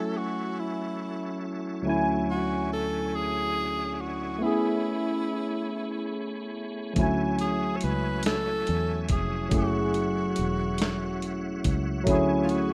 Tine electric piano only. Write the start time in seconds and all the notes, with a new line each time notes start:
Already playing: F#3 A3 C#4 E4 G#5
1.82 D2 F#3 A3
1.86 C#4 E4 G#5
4.38 A3 B3 C#4
4.44 E4 G#4
6.93 F3 A3 C#4
6.99 F#3 E4 G#5
9.49 F#3 A3 C#4
9.54 E4 G#4
12.04 F#3 A3 C#4
12.09 E4 G#4